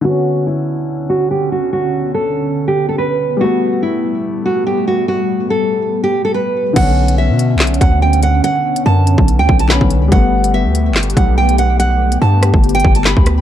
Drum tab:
CC |------------------------------------------------------------------------------------------------|------------------------------------------------------------------------------------------------|------------------------------------------------------------------------------------------------|------------------------------------------------------------------------------------------------|
HH |------------------------------------------------------------------------------------------------|------------------------------------------------------------------------------------------------|------------------------------------------------------------------------------------------------|------------------------------------------------------------------------------------------------|
CP |------------------------------------------------------------------------------------------------|------------------------------------------------------------------------------------------------|------------------------------------------------------------------------------------------------|------------------------------------------------------------------------------------------------|
SD |------------------------------------------------------------------------------------------------|------------------------------------------------------------------------------------------------|------------------------------------------------------------------------------------------------|------------------------------------------------------------------------------------------------|
BD |------------------------------------------------------------------------------------------------|------------------------------------------------------------------------------------------------|------------------------------------------------------------------------------------------------|------------------------------------------------------------------------------------------------|

CC |x-----------------------------------------------------------------------------------------------|------------------------------------------------------------------------------------------------|------------------------------------------------------------------------------------------------|------------------------------------------------------------------------------------------------|
HH |x-----------------x-----------------x-----------x---x---x---x-----------------x-----x-----------|x-----------------x-----------------x-----------x-----------------x-----------------x-----------|x-----------------x-----------------x-----------x---x---x---x-----------------x-----x-----------|x-----------------x-----------------x-----------x--x--x--x--------x-----------------x-----------|
CP |------------------------------------------------x-----------------------------------------------|------------------------------------------------------------------------x-----------------------|------------------------------------------------x-----------------------------------------------|------------------------------------------------------------------------x-----------------------|
SD |------------------------------------------------o-----------------------------------------------|------------------------------------------------------------------------o-----------------------|------------------------------------------------o-----------------------------------------------|------------------------------------r-----------------------------------o-----------r-----------|
BD |o-----------------------------------------------------------o-----------------------------------|------------------------------------------o-----------------o-----------------o-----------------|o-----------------------------------------------------------o-----------------------------------|------------------------------------------o-----------------o-----------------o-----------------|